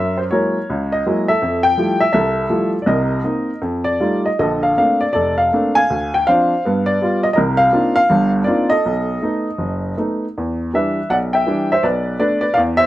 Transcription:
Already playing: F#2 A#4 E5
0.17 C5
0.31 F#3 G#3 A#3 E4 A#4 C#5
0.70 C#2
0.92 D#5
1.06 F#3 G#3 A#3 E4
1.28 A4 E5
1.42 F2
1.63 G5
1.78 F3 G3 A3 E4
2.00 E5
2.13 C2 A4 E5
2.50 F3 G3 A3 E4
2.82 D5
2.86 C2 C3 A#4 D#5
3.24 A#3 C4 D#4
3.62 F2
3.84 D5
4.00 G3 A3 D#4 F4
4.26 D#5
4.39 A#1 D3 A4 D#5
4.63 F5
4.77 A3 A#3 C4 D4 F5
5.01 D5
5.13 F1 A4 D5
5.38 F5
5.53 A3 A#3 C4 D4
5.75 F5 G#5
5.90 D2
6.14 G5
6.27 F3 C4 D4 C5 F5
6.65 G2 B3
6.86 D5
7.02 G3 B3 F4
7.23 D#5
7.33 A#4 D#5
7.37 C2 C3
7.57 F5
7.72 A#3 C4 D4 D#4 F4
7.96 F5
8.09 G1 G2
8.44 A#3 C4 D4 D#4 F4 D5
8.70 A4 D#5
8.86 B1
9.22 A3 B3 D#4
9.58 F#1
9.97 A3 B3 D#4
10.38 E2
10.74 E3 G3 D4 B4 E5
11.10 B1 D5 F#5
11.33 E5 G5
11.47 E3 G3 D4
11.72 C5 E5
11.83 B1 B4 D5
12.19 A3 B3 D4 B4 D5
12.41 B4 D5
12.54 E2 D5 F5
12.77 C5 E5

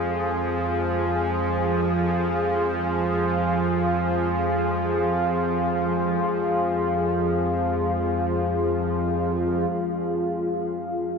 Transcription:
Already playing: F2 F3 F4 G#4 F5
9.70 F2 F3 G#4

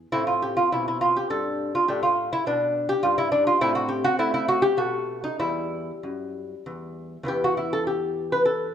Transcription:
0.12 A2 C4 E4
0.27 F4
0.42 G4
0.57 F4
0.72 B2 E4
0.88 E4
1.01 F4
1.16 G4
1.30 G2 A4
1.75 F4
1.88 A2 D4 G4
2.03 F4
2.33 E4
2.46 B2 D4
2.89 G4
3.03 G2 F4
3.18 E4
3.32 D4
3.47 F4
3.61 A2 C4 E4
3.75 F#4
3.89 G4
4.04 F#4
4.19 A3 E4
4.34 E4
4.48 F#4
4.62 G4
4.77 B2 A3 F#4
5.24 D#4
5.39 E2 G3 E4
6.03 F#2
6.66 E2
7.23 E2 E3 B3
7.28 G4
7.44 F#4
7.57 E4
7.73 A4
7.87 G4
8.32 B4
8.45 A4

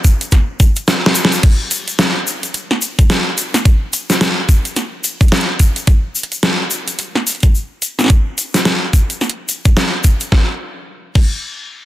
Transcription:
0.04 kick, closed hi-hat, shaker
0.21 closed hi-hat, shaker
0.31 kick, snare, closed hi-hat, shaker
0.60 kick, closed hi-hat, shaker
0.76 closed hi-hat, shaker
0.88 snare, closed hi-hat, shaker
1.06 snare
1.15 closed hi-hat, shaker
1.25 snare
1.32 closed hi-hat, shaker
1.43 kick, closed hi-hat, crash, shaker
1.71 closed hi-hat, shaker
1.88 closed hi-hat, shaker
1.99 snare, closed hi-hat, shaker
2.27 shaker
2.43 closed hi-hat, shaker
2.54 closed hi-hat, shaker
2.71 snare
2.82 closed hi-hat, shaker
2.99 kick, closed hi-hat, shaker
3.10 snare, shaker
3.38 closed hi-hat, shaker
3.54 snare, closed hi-hat, shaker
3.65 kick, closed hi-hat, shaker
3.93 closed hi-hat, shaker
4.10 snare, closed hi-hat, shaker
4.21 snare, closed hi-hat, shaker
4.49 kick, closed hi-hat, shaker
4.65 closed hi-hat, shaker
4.76 snare, closed hi-hat, shaker
5.04 closed hi-hat, shaker
5.21 kick, closed hi-hat, shaker
5.23 closed hi-hat
5.28 snare, closed hi-hat
5.32 closed hi-hat, shaker
5.37 closed hi-hat
5.41 closed hi-hat
5.59 kick, closed hi-hat, shaker
5.76 closed hi-hat, shaker
5.87 kick, closed hi-hat, shaker
6.15 shaker
6.23 closed hi-hat
6.32 closed hi-hat, shaker
6.43 snare, closed hi-hat, shaker
6.71 closed hi-hat, shaker
6.88 closed hi-hat, shaker
6.99 closed hi-hat, shaker
7.15 snare
7.27 closed hi-hat, shaker
7.29 closed hi-hat
7.32 closed hi-hat
7.35 closed hi-hat
7.40 kick, closed hi-hat, shaker
7.43 closed hi-hat
7.55 shaker
7.82 closed hi-hat, shaker
7.99 snare, shaker
8.01 snare
8.04 snare
8.06 snare
8.08 kick, snare, closed hi-hat, shaker
8.38 closed hi-hat, shaker
8.54 snare, closed hi-hat, shaker
8.65 snare, closed hi-hat, shaker
8.93 kick, closed hi-hat, shaker
9.10 closed hi-hat, shaker
9.21 snare, shaker
9.29 closed hi-hat
9.49 closed hi-hat, shaker
9.65 kick, closed hi-hat, shaker
9.76 snare, closed hi-hat, shaker
10.04 kick, closed hi-hat, shaker
10.20 closed hi-hat, shaker
10.32 kick, snare
11.15 kick, crash

